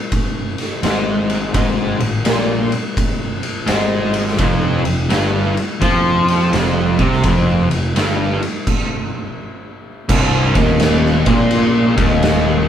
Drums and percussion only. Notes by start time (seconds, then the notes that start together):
0.12 kick, ride
0.58 snare, ride
0.83 snare, ride
1.30 ride
1.54 kick, ride
2.00 ride
2.25 snare, ride
2.72 ride
2.97 kick, ride
3.43 ride
3.67 snare, ride
4.14 ride
4.28 snare
4.38 kick, ride
4.85 ride
5.10 snare, ride
5.57 ride
5.82 kick, ride
6.28 snare, ride
6.53 snare, ride
6.99 kick, ride
7.12 snare
7.24 kick, ride
7.71 ride
7.96 snare, ride
8.42 ride
8.67 kick, crash
10.09 kick, crash
10.55 kick, ride
10.80 snare, ride
11.05 snare
11.26 kick, ride
11.51 ride
11.98 kick, ride
12.22 snare, ride